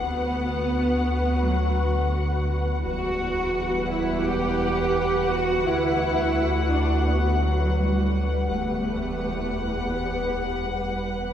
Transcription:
Already playing: viola section B4, violin section F#5
0.03 double bass section D2, sub bass D2, cello section B3, viola section F#4
1.44 cello section F#3
2.84 sub bass E1, double bass section E2, viola section G3 B4, cello section F#4, violin section F#5
3.90 cello section E4
4.25 cello section G4
5.31 cello section F#4
5.66 double bass section D2, sub bass D2, cello section E4, viola section F#4
6.73 cello section D4
7.09 cello section B3
7.44 cello section F#3
7.80 cello section G3
8.49 sub bass E1, double bass section E2, cello section A3, viola section G4 B4, violin section F#5
9.92 cello section B3
10.65 cello section G3

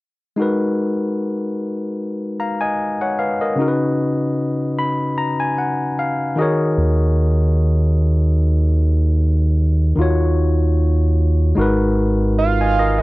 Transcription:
0.36 tine electric piano G#3 D#4 F#4
0.41 tine electric piano A#4 B4
2.40 tine electric piano F5 A#5
2.61 tine electric piano D#5 G#5
3.01 tine electric piano C#5 F#5
3.19 tine electric piano B4 F5
3.41 tine electric piano A#4 D#5
3.56 tine electric piano C#3 C#4 D#4
3.60 tine electric piano F#4 A#4
3.68 tine electric piano B4
4.79 tine electric piano B5
5.18 tine electric piano A#5
5.40 tine electric piano G#5
5.58 tine electric piano F#5
5.99 tine electric piano F5
6.36 tine electric piano D#3 D#4 F#4 G#4 D#5
6.41 tine electric piano A#4 C#5
6.78 analog synth bass D#2
9.96 analog synth bass D#2, tine electric piano D#3 D#4 F4
10.00 tine electric piano F#4 C#5
11.55 analog synth bass G#1, tine electric piano G#3 D#4 F#4
11.59 tine electric piano A#4 B4
12.38 analog synth lead F5
12.61 tine electric piano D#5 G#5
12.79 tine electric piano A#4 D#5
12.99 analog synth lead D#5

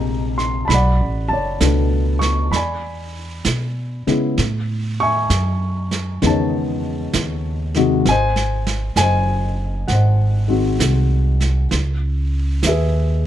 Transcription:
Already playing: upright bass A#1, grand piano C3 G3 G#3 A#3 G4 A#4 C5 D#5 G5 A#5
0.38 grand piano C6, snare
0.65 upright bass B1, grand piano A5 B5
0.70 brush sweep, snare
0.74 grand piano D5 F#5
1.00 upright bass A1
1.29 upright bass F#1, grand piano A5
1.33 grand piano C#5 D5
1.60 upright bass C#2, grand piano B2 A3 B3 D4, snare, hi-hat pedal
2.19 grand piano C#6, snare
2.51 upright bass E2, grand piano B5, brush sweep, snare
2.56 grand piano D5 G#5
3.45 upright bass B2, snare, hi-hat pedal
4.07 grand piano C#3 G#3 B3 E4, muted upright bass stroke, snare
4.38 upright bass A2, brush sweep, snare
5.00 grand piano E5 G#5 C#6
5.30 upright bass F#2, snare, hi-hat pedal
5.91 snare
6.22 upright bass E2, grand piano C#3 D#3 G#3 B3, brush sweep, snare
6.27 grand piano C#5 D#5 A5
7.13 upright bass D#2, snare, hi-hat pedal
7.74 grand piano C3 D#3 G#3 F#4, snare
8.05 upright bass G#1, grand piano G#5, brush sweep, snare
8.10 grand piano C5 D#5
8.36 snare
8.67 snare
8.96 upright bass F#1, grand piano G#5, snare, hi-hat pedal
9.01 grand piano C5 D#5
9.88 upright bass G#1, grand piano F#5, brush sweep, snare
9.92 grand piano C5 D#5
10.48 grand piano D#3 G#3 C4 F#4
10.79 upright bass C2, snare, hi-hat pedal
11.40 snare
11.71 upright bass C#2, brush sweep, snare
12.63 upright bass D#2, grand piano E5, snare, hi-hat pedal
12.68 grand piano G#4 B4

